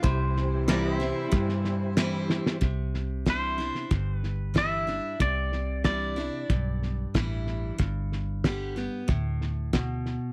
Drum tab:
HH |----p-------p---|----p-------p---|----p-------p---|----p-------p---|
SD |o-o-o-o-ooo-o-oo|o-o-o-ooo-o-o-o-|o-o-o-o-o-o-o-o-|o-o-o-o-o-o-o-o-|
BD |o-------o-------|o---o---o---o---|o---o---o---o---|o---o---o---o---|